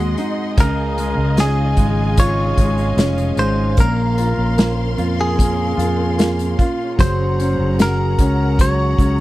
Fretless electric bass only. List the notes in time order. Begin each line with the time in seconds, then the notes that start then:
Already playing: D#2
0.58 C#2
1.17 C#2
1.77 G#1
2.57 G#1
2.97 F1
3.36 G#1
3.78 A#1
4.37 A#1
4.98 F2
5.77 F2
6.99 F#1
7.58 F#1
8.19 C#2
8.98 C#2